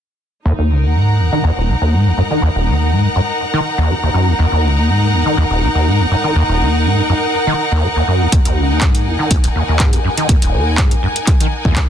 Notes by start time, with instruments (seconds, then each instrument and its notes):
0.45 acid bass D#2, string section D#4
0.59 acid bass D#2
0.70 acid bass C#2, string section A#4
0.83 acid bass D#2
0.88 string section F#5 A#5
0.95 acid bass G#2
1.19 acid bass D#2
1.32 acid bass D#3
1.44 acid bass D#2
1.57 acid bass D#1
1.68 acid bass C#2
1.82 acid bass D#2
1.93 acid bass G#2
2.06 acid bass D#2
2.18 acid bass F#2
2.31 acid bass D#3
2.42 acid bass D#2
2.55 acid bass D#1
2.67 acid bass D#2
2.91 acid bass G#2
3.05 acid bass F#2
3.16 acid bass F#2
3.54 acid bass D#3
3.78 acid bass D#2
3.90 acid bass G#2
4.03 acid bass D#2
4.14 acid bass F#2
4.27 acid bass D#2
4.39 acid bass D#2
4.52 acid bass D#2
4.64 acid bass C#2
4.77 acid bass D#2
4.88 acid bass G#2
5.13 acid bass D#2
5.26 acid bass D#3
5.37 acid bass D#2
5.50 acid bass D#1
5.62 acid bass C#2
5.75 acid bass D#2
5.87 acid bass G#2
6.00 acid bass D#2
6.11 acid bass F#2
6.24 acid bass D#3
6.36 acid bass D#2
6.49 acid bass D#1
6.60 acid bass D#2
6.85 acid bass G#2
6.98 acid bass F#2
7.09 acid bass F#2
7.47 acid bass D#3
7.72 acid bass D#2
7.83 acid bass G#2
7.96 acid bass D#2
8.08 acid bass F#2
8.21 acid bass D#2
8.32 acid bass D#2, kick, closed hi-hat
8.45 acid bass D#2, closed hi-hat
8.57 acid bass C#2
8.70 acid bass D#2
8.74 string section G#5
8.81 acid bass G#2, kick, clap, closed hi-hat
8.95 closed hi-hat
9.06 acid bass D#2
9.19 acid bass D#3
9.31 acid bass D#2, kick, closed hi-hat
9.44 acid bass D#1, closed hi-hat
9.55 acid bass D#2
9.68 acid bass D#2
9.79 acid bass G#2, kick, clap, closed hi-hat
9.93 acid bass D#2, closed hi-hat
10.05 acid bass F#2
10.18 acid bass D#3, closed hi-hat
10.29 acid bass D#2, kick, closed hi-hat
10.42 acid bass D#1, closed hi-hat
10.54 acid bass D#2
10.78 acid bass G#2, kick, clap, closed hi-hat
10.91 acid bass F#2, closed hi-hat
11.03 acid bass F#2
11.16 closed hi-hat
11.27 kick, clap, closed hi-hat
11.40 acid bass D#3, closed hi-hat
11.65 acid bass D#2, kick
11.76 acid bass G#2, kick, clap, closed hi-hat